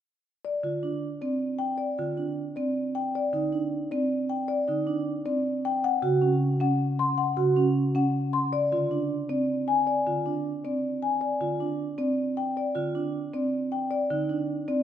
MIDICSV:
0, 0, Header, 1, 4, 480
1, 0, Start_track
1, 0, Tempo, 384615
1, 558, Time_signature, 7, 3, 24, 8
1, 18508, End_track
2, 0, Start_track
2, 0, Title_t, "Marimba"
2, 0, Program_c, 0, 12
2, 557, Note_on_c, 0, 74, 67
2, 870, Note_off_c, 0, 74, 0
2, 1516, Note_on_c, 0, 74, 49
2, 1830, Note_off_c, 0, 74, 0
2, 1979, Note_on_c, 0, 79, 68
2, 2217, Note_on_c, 0, 74, 61
2, 2304, Note_off_c, 0, 79, 0
2, 2543, Note_off_c, 0, 74, 0
2, 3195, Note_on_c, 0, 74, 53
2, 3509, Note_off_c, 0, 74, 0
2, 3682, Note_on_c, 0, 79, 69
2, 3935, Note_on_c, 0, 74, 70
2, 3992, Note_off_c, 0, 79, 0
2, 4236, Note_off_c, 0, 74, 0
2, 4884, Note_on_c, 0, 74, 61
2, 5193, Note_off_c, 0, 74, 0
2, 5360, Note_on_c, 0, 79, 67
2, 5594, Note_on_c, 0, 74, 73
2, 5671, Note_off_c, 0, 79, 0
2, 5909, Note_off_c, 0, 74, 0
2, 6559, Note_on_c, 0, 74, 63
2, 6871, Note_off_c, 0, 74, 0
2, 7052, Note_on_c, 0, 79, 82
2, 7292, Note_on_c, 0, 78, 83
2, 7355, Note_off_c, 0, 79, 0
2, 7595, Note_off_c, 0, 78, 0
2, 8250, Note_on_c, 0, 78, 69
2, 8555, Note_off_c, 0, 78, 0
2, 8727, Note_on_c, 0, 84, 82
2, 8957, Note_on_c, 0, 78, 76
2, 9034, Note_off_c, 0, 84, 0
2, 9270, Note_off_c, 0, 78, 0
2, 9930, Note_on_c, 0, 78, 60
2, 10234, Note_off_c, 0, 78, 0
2, 10398, Note_on_c, 0, 84, 81
2, 10640, Note_on_c, 0, 74, 80
2, 10710, Note_off_c, 0, 84, 0
2, 10951, Note_off_c, 0, 74, 0
2, 11600, Note_on_c, 0, 74, 58
2, 11911, Note_off_c, 0, 74, 0
2, 12078, Note_on_c, 0, 80, 71
2, 12316, Note_on_c, 0, 74, 66
2, 12390, Note_off_c, 0, 80, 0
2, 12630, Note_off_c, 0, 74, 0
2, 13284, Note_on_c, 0, 74, 55
2, 13593, Note_off_c, 0, 74, 0
2, 13759, Note_on_c, 0, 80, 60
2, 13991, Note_on_c, 0, 74, 64
2, 14071, Note_off_c, 0, 80, 0
2, 14308, Note_off_c, 0, 74, 0
2, 14957, Note_on_c, 0, 74, 56
2, 15270, Note_off_c, 0, 74, 0
2, 15439, Note_on_c, 0, 79, 71
2, 15687, Note_on_c, 0, 74, 68
2, 15751, Note_off_c, 0, 79, 0
2, 15994, Note_off_c, 0, 74, 0
2, 16647, Note_on_c, 0, 74, 55
2, 16953, Note_off_c, 0, 74, 0
2, 17121, Note_on_c, 0, 79, 69
2, 17355, Note_on_c, 0, 74, 71
2, 17431, Note_off_c, 0, 79, 0
2, 17669, Note_off_c, 0, 74, 0
2, 18324, Note_on_c, 0, 74, 63
2, 18508, Note_off_c, 0, 74, 0
2, 18508, End_track
3, 0, Start_track
3, 0, Title_t, "Vibraphone"
3, 0, Program_c, 1, 11
3, 796, Note_on_c, 1, 65, 54
3, 1035, Note_on_c, 1, 62, 52
3, 1110, Note_off_c, 1, 65, 0
3, 1349, Note_off_c, 1, 62, 0
3, 2474, Note_on_c, 1, 65, 56
3, 2714, Note_on_c, 1, 62, 54
3, 2789, Note_off_c, 1, 65, 0
3, 3029, Note_off_c, 1, 62, 0
3, 4162, Note_on_c, 1, 63, 61
3, 4398, Note_on_c, 1, 62, 55
3, 4472, Note_off_c, 1, 63, 0
3, 4710, Note_off_c, 1, 62, 0
3, 5837, Note_on_c, 1, 63, 61
3, 6075, Note_on_c, 1, 62, 61
3, 6150, Note_off_c, 1, 63, 0
3, 6389, Note_off_c, 1, 62, 0
3, 7520, Note_on_c, 1, 66, 66
3, 7756, Note_on_c, 1, 61, 57
3, 7831, Note_off_c, 1, 66, 0
3, 8070, Note_off_c, 1, 61, 0
3, 9194, Note_on_c, 1, 66, 68
3, 9438, Note_on_c, 1, 61, 70
3, 9509, Note_off_c, 1, 66, 0
3, 9750, Note_off_c, 1, 61, 0
3, 10881, Note_on_c, 1, 65, 66
3, 11121, Note_on_c, 1, 62, 63
3, 11192, Note_off_c, 1, 65, 0
3, 11432, Note_off_c, 1, 62, 0
3, 12563, Note_on_c, 1, 65, 58
3, 12800, Note_on_c, 1, 62, 56
3, 12872, Note_off_c, 1, 65, 0
3, 13111, Note_off_c, 1, 62, 0
3, 14240, Note_on_c, 1, 65, 62
3, 14481, Note_on_c, 1, 62, 54
3, 14551, Note_off_c, 1, 65, 0
3, 14791, Note_off_c, 1, 62, 0
3, 15911, Note_on_c, 1, 65, 64
3, 16161, Note_on_c, 1, 62, 58
3, 16228, Note_off_c, 1, 65, 0
3, 16471, Note_off_c, 1, 62, 0
3, 17603, Note_on_c, 1, 63, 62
3, 17841, Note_on_c, 1, 62, 61
3, 17912, Note_off_c, 1, 63, 0
3, 18151, Note_off_c, 1, 62, 0
3, 18508, End_track
4, 0, Start_track
4, 0, Title_t, "Marimba"
4, 0, Program_c, 2, 12
4, 792, Note_on_c, 2, 50, 57
4, 1108, Note_off_c, 2, 50, 0
4, 1521, Note_on_c, 2, 60, 55
4, 1831, Note_off_c, 2, 60, 0
4, 2486, Note_on_c, 2, 50, 58
4, 2793, Note_off_c, 2, 50, 0
4, 3206, Note_on_c, 2, 60, 57
4, 3513, Note_off_c, 2, 60, 0
4, 4160, Note_on_c, 2, 50, 57
4, 4471, Note_off_c, 2, 50, 0
4, 4892, Note_on_c, 2, 60, 63
4, 5195, Note_off_c, 2, 60, 0
4, 5846, Note_on_c, 2, 50, 58
4, 6153, Note_off_c, 2, 50, 0
4, 6563, Note_on_c, 2, 60, 61
4, 6872, Note_off_c, 2, 60, 0
4, 7517, Note_on_c, 2, 49, 67
4, 7830, Note_off_c, 2, 49, 0
4, 8240, Note_on_c, 2, 61, 61
4, 8551, Note_off_c, 2, 61, 0
4, 9201, Note_on_c, 2, 49, 61
4, 9511, Note_off_c, 2, 49, 0
4, 9921, Note_on_c, 2, 61, 68
4, 10231, Note_off_c, 2, 61, 0
4, 10890, Note_on_c, 2, 50, 63
4, 11194, Note_off_c, 2, 50, 0
4, 11598, Note_on_c, 2, 60, 62
4, 11910, Note_off_c, 2, 60, 0
4, 12566, Note_on_c, 2, 50, 61
4, 12873, Note_off_c, 2, 50, 0
4, 13288, Note_on_c, 2, 60, 50
4, 13594, Note_off_c, 2, 60, 0
4, 14240, Note_on_c, 2, 50, 60
4, 14551, Note_off_c, 2, 50, 0
4, 14952, Note_on_c, 2, 60, 65
4, 15268, Note_off_c, 2, 60, 0
4, 15919, Note_on_c, 2, 50, 59
4, 16231, Note_off_c, 2, 50, 0
4, 16642, Note_on_c, 2, 60, 60
4, 16952, Note_off_c, 2, 60, 0
4, 17603, Note_on_c, 2, 50, 65
4, 17912, Note_off_c, 2, 50, 0
4, 18320, Note_on_c, 2, 60, 61
4, 18508, Note_off_c, 2, 60, 0
4, 18508, End_track
0, 0, End_of_file